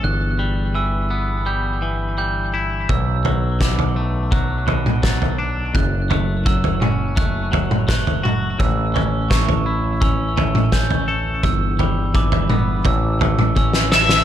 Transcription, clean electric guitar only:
\new Staff \with { instrumentName = "Clean electric guitar" } { \clef bass \time 4/4 \key b \minor \tempo 4 = 84 e,8 g8 e8 b8 g8 e8 g8 e'8 | b,,8 fis8 b,8 a8 fis8 b,8 fis8 d'8 | fis,8 a8 fis8 cis'8 a8 fis8 a8 fis'8 | a,8 cis'8 a8 e'8 cis'8 a8 cis'8 a'8 |
e,8 g8 e8 b8 a,8 a8 cis'8 a'8 | }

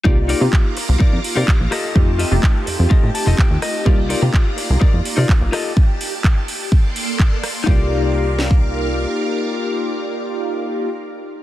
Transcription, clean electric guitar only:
\new Staff \with { instrumentName = "Clean electric guitar" } { \time 4/4 \key c \dorian \tempo 4 = 126 << { r1 | r2 r8 a''8 g''8 ees''8 | r1 | r1 |
r1 | r1 | } \\ { <ees' f' bes' d''>16 r16 <ees' f' bes' d''>16 r4 r16 <ees' f' bes' d''>8 r16 <ees' f' bes' d''>16 r8 <f' g' a' ees''>8~ | <f' g' a' ees''>16 r16 <f' g' a' ees''>16 r4 r16 <f' g' a' ees''>8 r16 <f' g' a' ees''>16 r4 | <ees' f' bes' d''>16 r16 <ees' f' bes' d''>16 r4 r16 <ees' f' bes' d''>8 r16 <ees' f' bes' d''>16 r8 <f' g' a' ees''>8 | r1 |
<ees' f' bes' d''>1~ | <ees' f' bes' d''>1 | } >> }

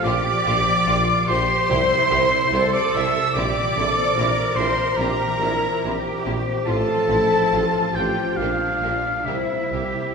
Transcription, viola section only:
\new Staff \with { instrumentName = "Viola section" } { \time 4/4 \key c \mixolydian \tempo 4 = 72 d''4. c''4.~ c''16 d''16 e''8 | d''4. c''8 bes'4. r8 | a'4. g'8 f'4 e'4 | }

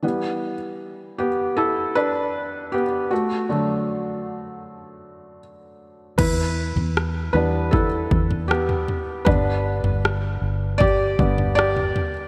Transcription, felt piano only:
<<
  \new Staff \with { instrumentName = "Felt piano" } { \time 4/4 \key e \minor \tempo 4 = 78 r4. <b g'>8 <e' a'>8 <d' b'>4 <b g'>8 | <a fis'>2. r4 | <e' b'>4 r8 <d' b'>8 <e' a'>4 <b g'>4 | <d' b'>2 <g' d''>4 <g' d''>8. r16 | }
  \new Staff \with { instrumentName = "Felt piano" } { \clef bass \time 4/4 \key e \minor <e g b>8 r2. r8 | r8 <d fis a>2.~ <d fis a>8 | r4. <e g b>8 r2 | <d g b>2~ <d g b>8 <d g b>8 r4 | }
>>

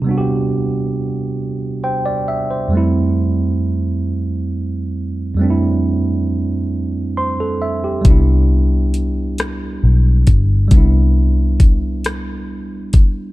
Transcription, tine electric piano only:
<<
  \new Staff \with { instrumentName = "Tine electric piano" } { \time 6/8 \key c \major \tempo 4. = 45 r2 <c'' g''>16 d''16 e''16 c''16~ | c''16 r2 r8. | r2 <c'' c'''>16 a'16 e''16 g'16~ | g'16 r2 r8. |
r2. | }
  \new Staff \with { instrumentName = "Tine electric piano" } { \time 6/8 \key c \major <c g b d' fis' g'>2. | <f, g a c' e'>2. | <f, g a c' d' e'>2. | <g b d' e'>2. |
<g b d' e'>2. | }
>>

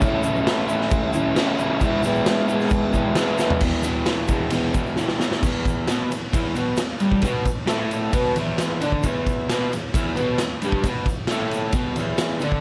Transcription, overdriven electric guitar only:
\new Staff \with { instrumentName = "Overdriven electric guitar" } { \clef bass \time 4/4 \key e \major \tempo 4 = 133 <cis a cis' e'>8 <a cis' e'>4 <a cis' e'>4 <a cis' e'>8 <cis a cis' e'>8 <a cis' e'>8 | <e gis b e'>8 <gis b e'>4 <gis b e'>4 <gis b e'>8 <e gis b e'>8 <gis b e'>8 | <e, b, e>8 <e, b, e>8 <e, b, e>8 <e, b, e>8 <e, b, e>8 <e, b, e>8 <e, b, e>8 <e, b, e>8 | <e, e>4 <b, b>8 e,8 <e, e>8 <b, b>8 e,8 <g, g>8 |
<b, b>8 r8 <a, a>4 <b, b>8 <e, e>4 <d d'>8 | <e, e>4 <b, b>8 e,8 <e, e>8 <b, b>8 e,8 <g, g>8 | <b, b>8 r8 <a, a>4 <b, b>8 <e, e>4 <d d'>8 | }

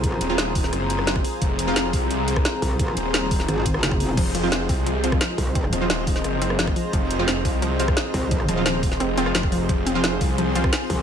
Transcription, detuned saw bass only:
\new Staff \with { instrumentName = "Detuned saw bass" } { \clef bass \time 4/4 \key f \minor \tempo 4 = 174 r8 ees,,4. ges,,4. r8 | f,,4. c,4. r4 | r8 ees,,4. r2 | f,,4. c,4. r4 |
r8 ees,,4. ges,,4. r8 | f,,4. c,4. r4 | r8 ees,,4. f,,2 | f,,4. c,4. r4 | }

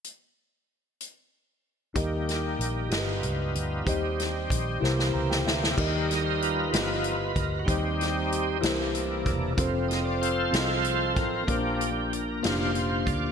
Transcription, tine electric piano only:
<<
  \new Staff \with { instrumentName = "Tine electric piano" } { \time 6/8 \key ees \major \tempo 4. = 63 << { r2. | r2. | r2 bes''16 g''16 e''8 | r2. |
r2. | r2. | r2. | } \\ { r2. | <ees' g' bes' ees''>4 r8 <f' g' bes' b' ees''>4 r8 | <ees' g' c'' ees''>4 r8 <e' g' bes' c''>4 r8 | <ees' g' bes' ees''>4 r8 <f' g' b' ees''>4 r8 |
<ees' g' c'' ees''>4 r8 <e' g' bes' c''>4 r8 | <c' f' a' c''>4 r8 <c' f' aes' a' ees''>4 r8 | <bes des' d' f' bes'>4 r8 <bes des' d' f' g'>4 r8 | } >> }
  \new Staff \with { instrumentName = "Tine electric piano" } { \clef bass \time 6/8 \key ees \major r2. | ees4. g,4. | ees4. c4. | ees4. g,4. |
ees4. c4. | r2. | bes,4. r4. | }
>>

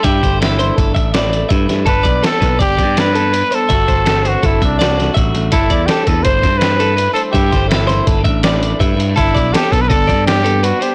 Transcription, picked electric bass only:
\new Staff \with { instrumentName = "Picked electric bass" } { \clef bass \time 5/4 \key g \major \tempo 4 = 164 g,8 g,,4. g,,8 a,,4. g,8 g,8 | g,,8 b,,8 r8 b,,8 g,,8 g,2 r8 | g,,8 g,,4. g,,8 c,4. a,,8 a,,8 | g,,8 e,8 r8 e,8 g,,8 g,2 r8 |
g,8 g,,4. g,,8 a,,4. g,8 g,8 | g,,8 b,,8 r8 b,,8 g,,8 g,2 r8 | }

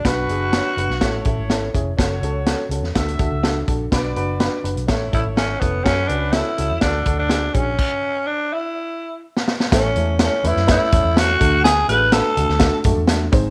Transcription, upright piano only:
<<
  \new Staff \with { instrumentName = "Upright piano" } { \time 4/4 \key a \major \tempo 4 = 124 <d' fis' b'>8 <d' fis' gis'>8 <d' fis' cis''>8 <d' fis' b'>8 <cis' e' a'>8 <cis' e' a'>8 <cis' e' a'>8 <cis' e' gis'>8 | <cis' fis' a'>8 <cis' fis' a'>8 <cis' fis' a'>8 <cis' fis' a'>8 <d' fis' a'>8 <d' fis' a'>8 <d' fis' a'>8 <d' fis' a'>8 | <d' fis' b'>8 <d' fis' b'>8 <d' fis' b'>8 <d' fis' b'>8 <cis' e' a'>8 <cis' e' a'>8 <cis' e' a'>8 <cis' e' a'>8 | <cis' fis' a'>8 <cis' fis' b'>8 <cis' fis' a'>8 <cis' fis' a'>8 <d' fis' a'>8 <d' fis' a'>8 <d' fis' gis'>8 <d' fis' gis'>8 |
r1 | <a cis' e' a'>8 <a cis' e' a'>8 <a cis' e' a'>8 <a cis' e' b'>8 <a cis' e' b'>8 <a cis' e' a'>8 <a cis' e' a'>8 <a d' fis' a'>8~ | <a d' fis' a'>8 <a d' fis' gis'>8 <a d' fis' b'>8 <a d' fis' a'>8 <a d' fis' a'>8 <a d' fis' a'>8 <a d' fis' a'>8 <bis dis' gis' bis'>8 | }
  \new Staff \with { instrumentName = "Upright piano" } { \clef bass \time 4/4 \key a \major b,4. r8 a4. r8 | r1 | b,4. r8 a4. r8 | r2 d4. r8 |
r1 | a,4. r2 d8~ | d4 r2 r8 gis,8 | }
>>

